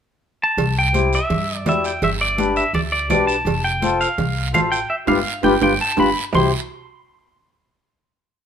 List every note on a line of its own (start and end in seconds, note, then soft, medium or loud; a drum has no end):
0.43 0.75 A5 medium
0.57 1.15 C2 loud
0.57 cowbell loud
0.57 high conga soft
0.57 low conga medium
0.57 long guiro medium
0.79 1.14 G5 loud
0.94 1.19 E4 medium
0.94 1.19 G4 medium
0.94 1.19 C5 medium
0.94 cowbell medium
0.94 high conga medium
0.94 short guiro medium
1.13 1.68 E5 medium
1.13 short guiro medium
1.30 1.66 G2 medium
1.30 cowbell medium
1.30 high conga soft
1.30 low conga medium
1.30 long guiro medium
1.66 1.95 E2 medium
1.66 1.91 E4 medium
1.66 1.91 G4 medium
1.66 1.92 D5 medium
1.66 1.85 E5 medium
1.66 cowbell medium
1.66 high conga medium
1.66 low conga medium
1.66 low timbale medium
1.66 short guiro medium
1.84 2.03 G5 medium
1.84 short guiro medium
2.02 2.60 G1 medium
2.02 2.09 E5 medium
2.02 cowbell loud
2.02 high conga soft
2.02 low conga medium
2.02 long guiro medium
2.21 2.56 D5 medium
2.38 2.64 D4 medium
2.38 2.64 G4 medium
2.38 2.64 B4 medium
2.38 cowbell medium
2.38 high conga medium
2.38 short guiro medium
2.56 2.73 E5 medium
2.56 short guiro medium
2.73 3.10 D2 medium
2.73 2.80 D5 medium
2.73 cowbell medium
2.73 high conga soft
2.73 low conga medium
2.73 long guiro medium
2.92 3.09 D5 medium
3.09 3.39 B1 medium
3.09 3.35 D4 medium
3.09 3.35 G4 medium
3.09 3.36 B4 medium
3.09 3.27 D5 medium
3.09 cowbell medium
3.09 high conga medium
3.09 low conga medium
3.09 low timbale medium
3.09 short guiro medium
3.27 3.64 A5 medium
3.27 short guiro medium
3.45 4.03 F1 medium
3.45 cowbell loud
3.45 high conga soft
3.45 low conga medium
3.45 long guiro medium
3.64 3.98 G5 loud
3.82 4.08 F4 medium
3.82 4.08 A4 medium
3.82 4.08 C5 medium
3.82 cowbell medium
3.82 high conga medium
3.82 short guiro medium
4.01 4.51 F5 medium
4.01 short guiro medium
4.18 4.54 C2 medium
4.18 cowbell medium
4.18 high conga soft
4.18 low conga medium
4.18 long guiro medium
4.53 4.83 A1 medium
4.53 4.79 F4 medium
4.53 4.79 A4 medium
4.53 4.79 C5 medium
4.53 4.59 F5 medium
4.53 cowbell medium
4.53 high conga medium
4.53 low conga medium
4.53 low timbale medium
4.53 short guiro medium
4.72 4.91 G5 medium
4.72 short guiro medium
4.90 4.95 E5 loud
5.07 5.21 G1 medium
5.07 5.19 F4 loud
5.07 5.19 G4 loud
5.07 5.19 B4 loud
5.07 5.42 F5 loud
5.07 high conga medium
5.07 high timbale loud
5.07 long guiro medium
5.43 5.57 G1 medium
5.43 5.56 F4 loud
5.43 5.56 G4 loud
5.43 5.56 B4 medium
5.43 5.62 G5 medium
5.43 high conga loud
5.43 high timbale loud
5.43 long guiro medium
5.61 5.76 G1 medium
5.61 5.73 F4 medium
5.61 5.73 G4 medium
5.61 5.74 B4 loud
5.61 5.81 G5 loud
5.61 high conga medium
5.61 high timbale medium
5.61 long guiro loud
5.81 5.98 A5 medium
5.97 6.12 G1 medium
5.97 6.10 F4 medium
5.97 6.10 G4 medium
5.97 6.10 B4 medium
5.97 6.24 B5 medium
5.97 high conga loud
5.97 high timbale medium
5.97 long guiro medium
6.33 6.51 C2 medium
6.33 6.51 E4 medium
6.33 6.51 G4 medium
6.33 6.51 C5 medium
6.33 6.52 C6 medium
6.33 low conga medium
6.33 low timbale loud
6.33 long guiro loud